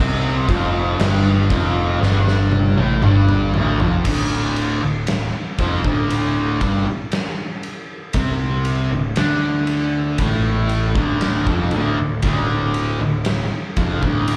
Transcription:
Already playing: C2 C3
0.00 C4
0.48 F1 F2 F3, kick, crash
0.99 G1 G2 G3, snare, crash
1.50 F1 F2 F3, kick, crash
2.01 G1 G2 G3, snare
2.28 snare
2.52 high tom
2.76 A1 A2 A3, high tom
3.02 G1 G2 G3, mid tom
3.29 mid tom
3.54 D1 D2 D3, floor tom
3.80 F1 F2 F3, floor tom
4.05 D1 D2 D3, kick, crash
4.56 ride
4.82 D1 D2
5.07 snare, ride
5.58 F1 F2 F3, kick, ride
5.84 D1 D2 D3, kick
6.10 ride
6.61 G1 G2 G3, kick, ride
6.86 muted distorted electric guitar stroke, muted picked electric bass stroke
7.12 snare, ride
7.63 ride
8.13 C2 C3 C4, kick, ride
8.65 ride
8.92 D1 D2
9.16 D2 D3 D4, snare, ride
9.67 ride
10.18 A1 A2 A3, kick, ride
10.69 ride
10.95 D1 D2 D3, kick
11.21 snare, ride
11.47 F1 F2 F3, kick
11.71 D1 D2 D3, ride
11.98 D1 D2
12.22 D1 D2 D3, kick, ride
12.74 ride
13.01 D1 D2
13.25 snare, ride
13.77 F1 F2 F3, kick, ride
14.03 D1 D2 D3, kick
14.28 ride

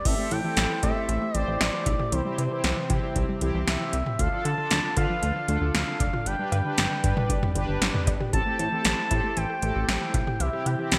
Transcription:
0.05 A1 E3 A3 C4 E4 G4 A4 C5 E5, kick, closed hi-hat, crash
0.18 A3 C4 G4 A4
0.31 A2 E3 G5, closed hi-hat
0.44 E3 C4 G4 A4
0.57 A1 E3, snare, closed hi-hat
0.70 E3
0.83 A2 E3 C4 G4 A4 E5, kick, closed hi-hat
0.96 A3
1.09 A1 E3, closed hi-hat
1.22 A3
1.35 A1 E3 C4 G4 C5 D5, closed hi-hat
1.48 A1 E3
1.61 A1 E3 D5, snare, closed hi-hat
1.74 E3
1.86 B1 E5, kick, closed hi-hat
1.99 G4, mid tom
2.12 C2 C3 E3 C4 E4 G4 C5, closed hi-hat
2.25 G3 C4 E4 G4
2.38 C3 E3 C5, closed hi-hat
2.51 E3 C4 E4 G4
2.64 C2 E3, snare, closed hi-hat
2.77 E3
2.90 C3 E3 C4 E4 G4, kick, closed hi-hat
3.03 G3
3.16 C2 E3, kick, closed hi-hat
3.29 G3
3.41 C2 E3 C4 E4 G4, closed hi-hat
3.54 C2 E3
3.67 C2 E3 E5, snare, closed hi-hat
3.80 E3
3.93 C2 E5, closed hi-hat
4.06 G4, mid tom
4.19 D2 D3 D4 F4 A4 F5, kick, closed hi-hat
4.32 F3 D4 F4 A4
4.45 D3 A5, closed hi-hat
4.58 D3 D4 F4 A4
4.71 D2 D3, snare, closed hi-hat
4.84 D3
4.97 D3 D4 F4 B4 F5, kick, closed hi-hat
5.10 F3
5.22 D2 D3, closed hi-hat
5.36 F3
5.48 D2 D3 D4 F4 A4, closed hi-hat
5.61 D2 D3
5.74 D2 D3 F5, snare, closed hi-hat
5.87 D3
6.00 F1 D5, kick, closed hi-hat
6.13 F4, mid tom
6.26 G1 D3 G3 D4 G4 B4 D5 G5, closed hi-hat
6.39 G3 D4 G4 B4
6.52 G2 D3 G5, closed hi-hat, cowbell
6.65 D3 D4 G4 B4
6.78 G1 D3, snare, closed hi-hat
6.91 D3
7.04 G2 D3 D4 G4 B4, kick, closed hi-hat
7.17 G3, mid tom
7.29 G1 D3, kick, closed hi-hat
7.43 G3, mid tom
7.55 G1 D3 D4 G4 B4, closed hi-hat
7.68 G1 D3
7.81 G1 D3, snare, closed hi-hat
7.94 D3, mid tom
8.07 G1 D5, kick, closed hi-hat
8.20 G4, mid tom
8.33 A1 E3 A3 C4 E4 G4 A4 C5 A5, kick, closed hi-hat
8.46 A3 C4 G4 A4
8.59 A2 E3 A5, closed hi-hat
8.72 E3 C4 G4 A4
8.85 A1 E3, snare, closed hi-hat
8.98 E3
9.11 A2 E3 C4 G4 A4, kick, closed hi-hat
9.24 A3
9.37 A1 E3 G5, closed hi-hat
9.50 A3
9.62 A1 E3 C4 G4 A4, closed hi-hat
9.76 A1 E3
9.88 A1 E3 G5, snare, closed hi-hat
10.01 E3
10.14 B1 E5, kick, closed hi-hat
10.27 G4, mid tom
10.40 C2 C3 E3 C4 E4 G4 E5, closed hi-hat
10.53 G3 C4 E4 G4
10.66 C3 E3 G5, closed hi-hat
10.79 E3 C4 E4 G4
10.92 C2 E3, snare, closed hi-hat

